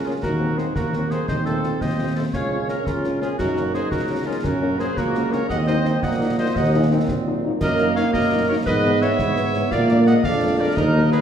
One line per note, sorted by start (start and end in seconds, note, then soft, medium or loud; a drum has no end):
0.00 0.14 C#2 medium
0.00 0.19 C#4 medium
0.05 0.11 F#3 medium
0.05 0.11 A#3 medium
0.05 0.11 C#4 medium
0.05 0.13 F4 medium
0.05 0.13 G#4 medium
0.22 0.62 D#2 medium
0.22 0.75 D#4 medium
0.22 0.55 F#4 medium
0.22 0.60 A#4 medium
0.22 concert bass drum medium
0.22 snare medium
0.39 0.46 F#3 medium
0.39 0.46 A#3 medium
0.39 0.46 C4 medium
0.57 0.64 F#3 medium
0.57 0.64 A#3 medium
0.57 0.64 C4 medium
0.57 0.65 G#4 medium
0.57 0.75 C5 medium
0.57 snare medium
0.75 1.19 D#2 medium
0.75 1.25 A#3 medium
0.75 1.08 F#4 medium
0.75 1.08 A#4 medium
0.75 concert bass drum medium
0.75 snare medium
0.93 0.99 F#3 medium
0.93 1.00 A#3 medium
0.93 1.00 C4 medium
0.93 snare medium
1.10 1.17 F#3 soft
1.10 1.17 A#3 medium
1.10 1.17 C4 medium
1.10 1.28 G#4 medium
1.10 1.27 C5 medium
1.10 snare medium
1.27 1.72 D#2 medium
1.27 2.29 C4 medium
1.27 1.44 C5 medium
1.27 1.37 D#5 medium
1.27 concert bass drum medium
1.27 snare medium
1.45 1.52 F3 medium
1.45 1.52 A3 medium
1.45 1.52 C4 medium
1.45 1.78 A4 medium
1.45 1.79 C5 medium
1.45 snare soft
1.63 1.70 F3 medium
1.63 1.69 A3 medium
1.63 1.70 C4 medium
1.63 snare medium
1.81 2.25 D#2 medium
1.81 2.16 C5 medium
1.81 2.14 D#5 medium
1.81 concert bass drum medium
1.81 snare medium
1.98 2.05 F3 medium
1.98 2.05 A3 soft
1.98 2.05 C4 medium
2.15 2.22 F3 medium
2.15 2.22 A3 medium
2.15 2.22 C4 medium
2.15 2.23 A4 medium
2.15 2.25 C5 medium
2.33 2.78 C#2 medium
2.33 3.35 C#4 medium
2.33 2.66 C#5 medium
2.33 2.67 F5 medium
2.33 concert bass drum medium
2.33 snare medium
2.51 2.57 F3 medium
2.51 2.57 A#3 medium
2.51 2.57 C#4 medium
2.68 2.75 F3 medium
2.68 2.75 A#3 medium
2.68 2.75 C#4 medium
2.68 2.85 A#4 medium
2.68 2.89 C#5 medium
2.68 snare medium
2.85 3.30 C#2 medium
2.85 3.19 F4 medium
2.85 3.21 A#4 medium
2.85 concert bass drum medium
2.85 snare medium
3.03 3.10 F3 medium
3.03 3.10 A#3 medium
3.03 3.10 C#4 medium
3.03 snare soft
3.20 3.27 F3 medium
3.20 3.27 A#3 medium
3.20 3.27 C#4 medium
3.20 3.29 F4 medium
3.20 3.38 G#4 medium
3.20 snare medium
3.38 3.83 F#2 medium
3.38 4.44 D#4 medium
3.38 3.71 F#4 medium
3.38 3.72 A#4 medium
3.38 concert bass drum medium
3.38 snare medium
3.38 crash soft
3.56 3.62 F#3 medium
3.56 3.62 A#3 medium
3.56 3.62 C#4 medium
3.56 snare medium
3.73 3.80 F#3 medium
3.73 3.79 A#3 medium
3.73 3.79 C#4 medium
3.73 3.90 G#4 medium
3.73 3.91 C5 medium
3.73 snare medium
3.90 4.36 C#2 medium
3.90 4.24 F#4 medium
3.90 4.28 A#4 medium
3.90 concert bass drum medium
3.90 snare medium
4.09 4.15 F#3 medium
4.09 4.15 A#3 medium
4.09 4.15 C#4 medium
4.26 4.33 F#3 medium
4.26 4.33 A#3 medium
4.26 4.33 C#4 medium
4.26 4.43 F4 medium
4.26 4.46 G#4 medium
4.44 4.89 F#2 medium
4.44 4.93 C#4 medium
4.44 4.79 F#4 medium
4.44 4.81 A#4 loud
4.44 concert bass drum medium
4.44 snare medium
4.62 4.68 F#3 medium
4.62 4.68 A#3 medium
4.62 4.68 C#4 medium
4.79 4.86 F#3 medium
4.79 4.86 A#3 medium
4.79 4.86 C#4 medium
4.79 4.96 G#4 medium
4.79 5.00 C5 loud
4.79 snare medium
4.96 5.41 C#2 medium
4.96 5.46 A#3 medium
4.96 5.29 F#4 medium
4.96 5.34 A#4 loud
4.96 concert bass drum medium
4.96 snare medium
5.14 5.21 F#3 medium
5.14 5.21 A#3 medium
5.14 5.21 C#4 medium
5.14 snare medium
5.32 5.38 F#3 medium
5.32 5.39 A#3 medium
5.32 5.39 C#4 medium
5.32 5.50 A#4 medium
5.32 5.49 C#5 loud
5.32 snare medium
5.49 5.94 D#2 medium
5.49 6.02 C4 medium
5.49 5.66 D#5 loud
5.49 5.58 F#5 loud
5.49 concert bass drum medium
5.49 snare medium
5.66 5.73 F#3 medium
5.66 5.74 A#3 medium
5.66 5.73 D#4 medium
5.66 6.00 C5 medium
5.66 6.00 D#5 loud
5.66 snare medium
5.85 5.92 F#3 medium
5.85 5.92 A#3 medium
5.85 5.91 D#4 medium
5.85 snare medium
6.02 6.47 A#1 medium
6.02 6.40 A#3 medium
6.02 6.38 D#5 loud
6.02 6.36 F#5 loud
6.02 concert bass drum medium
6.02 snare medium
6.20 6.26 F#3 medium
6.20 6.26 A#3 medium
6.20 6.26 D#4 medium
6.38 6.44 F#3 medium
6.38 6.44 A#3 medium
6.38 6.44 D#4 medium
6.38 6.54 C5 medium
6.38 6.57 D#5 loud
6.55 7.00 D#2 loud
6.55 6.72 D#4 medium
6.55 6.88 D#5 medium
6.55 6.91 F#5 loud
6.55 concert bass drum medium
6.55 snare medium
6.74 6.80 F#3 medium
6.74 6.80 A#3 medium
6.74 6.91 C#4 medium
6.74 6.80 D#4 medium
6.91 6.97 F#3 medium
6.91 6.97 A#3 medium
6.91 7.57 C4 medium
6.91 6.97 D#4 medium
7.08 7.52 A#1 medium
7.08 concert bass drum medium
7.08 snare medium
7.26 7.32 F#3 medium
7.26 7.32 A#3 medium
7.26 7.32 D#4 medium
7.43 7.50 F#3 medium
7.43 7.50 A#3 medium
7.43 7.50 D#4 medium
7.61 8.05 F#2 loud
7.61 8.63 A#3 loud
7.61 7.94 A#4 loud
7.61 7.94 D#5 loud
7.61 concert bass drum medium
7.61 snare medium
7.61 crash medium
7.79 7.86 F#3 medium
7.79 7.86 A#3 medium
7.79 7.85 D#4 medium
7.79 snare medium
7.95 8.03 F#3 medium
7.95 8.03 A#3 medium
7.95 8.03 D#4 medium
7.95 8.03 C#5 medium
7.95 8.12 F5 loud
7.95 snare medium
8.13 8.53 F#2 medium
8.13 8.46 A#4 loud
8.13 8.46 D#5 loud
8.13 concert bass drum medium
8.13 snare medium
8.32 8.38 F#3 medium
8.32 8.38 A#3 medium
8.32 8.38 D#4 medium
8.48 8.55 F#3 medium
8.48 8.55 A#3 medium
8.48 8.56 D#4 medium
8.48 8.56 A#4 loud
8.48 8.56 C#5 loud
8.66 9.10 G#2 loud
8.66 9.72 B3 medium
8.66 8.99 B4 loud
8.66 9.03 D#5 loud
8.66 concert bass drum medium
8.66 snare medium
8.84 8.90 E3 medium
8.84 8.90 G#3 medium
8.84 8.90 B3 medium
9.01 9.07 E3 medium
9.01 9.07 G#3 medium
9.01 9.07 B3 medium
9.01 9.68 C#5 loud
9.01 9.73 E5 loud
9.01 snare medium
9.19 9.63 G#2 medium
9.19 concert bass drum medium
9.19 snare medium
9.36 9.43 E3 medium
9.36 9.43 G#3 medium
9.36 9.43 B3 medium
9.36 snare medium
9.54 9.61 E3 medium
9.54 9.61 G#3 medium
9.54 9.61 B3 medium
9.54 snare medium
9.71 10.15 A#2 loud
9.71 10.20 A#3 medium
9.71 10.04 D5 loud
9.71 10.06 F5 loud
9.71 concert bass drum medium
9.71 snare medium
9.89 9.96 D3 medium
9.89 9.96 G#3 medium
9.89 9.96 A#3 medium
9.89 snare medium
10.07 10.14 D3 medium
10.07 10.13 G#3 medium
10.07 10.13 A#3 medium
10.07 10.24 D#5 loud
10.07 10.14 F#5 loud
10.07 snare medium
10.24 10.68 F2 medium
10.24 10.77 D4 medium
10.24 10.59 D5 loud
10.24 10.57 F5 loud
10.24 concert bass drum medium
10.24 snare medium
10.41 10.48 D3 medium
10.41 10.48 G#3 medium
10.41 10.48 A#3 medium
10.59 10.66 D3 medium
10.59 10.66 G#3 medium
10.59 10.66 A#3 medium
10.59 10.77 A#4 medium
10.59 10.78 D5 loud
10.76 11.21 D#2 loud
10.76 11.21 D#4 loud
10.76 11.10 A#4 loud
10.76 11.11 D#5 loud
10.76 concert bass drum medium
10.76 snare medium
10.94 11.00 D#3 medium
10.94 11.01 F#3 medium
10.94 11.00 A#3 medium
11.11 11.18 D#3 medium
11.11 11.18 F#3 medium
11.11 11.18 A#3 medium
11.11 11.21 G#4 medium
11.11 11.20 B4 loud
11.11 snare medium